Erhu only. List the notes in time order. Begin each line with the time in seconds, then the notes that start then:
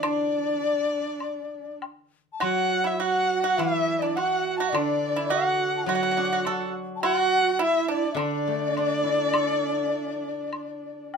0.09 D5
2.44 F#5
2.87 E5
3.01 F#5
3.43 F#5
3.60 E5
4.04 D5
4.17 F#5
4.58 A5
4.74 D5
5.30 F#5
5.88 F#5
7.05 F#5
7.64 E5
7.92 D5
8.22 D5